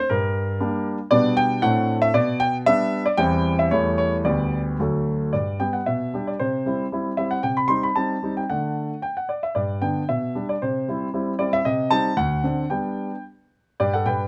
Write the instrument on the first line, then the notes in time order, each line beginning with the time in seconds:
grand piano
0.10 G2 A#4
0.60 G3 A#3 D4
1.11 B2 G3 B3 D4 D5
1.37 G5
1.62 A2 A3 C4 D4 F#5
2.02 E5
2.14 B2 D5
2.40 G5
2.66 G3 B3 D4 E5
3.06 D5
3.17 E2 G3 C4 E4 G5
3.59 E5
3.71 E2 G3 A3 E4 C#5
3.98 C#5
4.25 D2 G3 B3 G4 D5
4.80 D2 F#3 A3 A4
5.33 G2 D5
5.60 G3 B3 G4 G5
5.73 F#5
5.86 B2 E5
6.14 G3 D4 G4
6.27 D5
6.39 C3 C5
6.66 G3 C4 E4
6.92 G3 C4 E4
7.17 G3 C4 E4 E5
7.31 F#5
7.43 C3 G5
7.57 B5
7.68 G3 C4 D#4 C6
7.83 B5
7.96 G3 C4 D#4 A5
8.23 G3 C4 D#4
8.37 G5
8.50 D3 A3 D4 F#5
9.02 G5
9.17 F#5
9.29 D5
9.43 E5
9.55 G2 D5
9.82 D3 B3 D4 G5
10.09 B2 E5
10.35 G3 D4
10.49 D5
10.62 C3 C5
10.88 G3 C4 E4
11.14 G3 C4 E4
11.39 G3 C4 E4 D5
11.53 E5
11.65 C3 D#5
11.91 G3 C4 D#4 A5
12.17 D2 F#5
12.43 D3 C4 D4
12.70 G3 B3 D4 G5
13.80 G2 G4 D5
13.93 A4 F#5
14.06 G2 B4 G5